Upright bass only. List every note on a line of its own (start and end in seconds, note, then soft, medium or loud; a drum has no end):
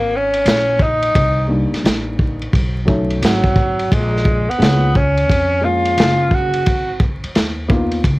0.00 0.43 G#1 medium
0.46 1.11 A#1 medium
1.15 1.69 C2 medium
1.72 muted upright bass stroke soft
1.84 2.50 A1 medium
2.53 3.19 B1 medium
3.22 3.87 G#1 medium
3.92 4.45 A#1 loud
4.48 muted upright bass stroke soft
4.60 5.29 C#2 medium
5.29 5.95 F2 medium
5.98 6.67 F#1 medium
6.67 7.21 G#1 loud
7.24 muted upright bass stroke soft
7.36 8.02 D#2 medium
8.04 8.19 C#2 medium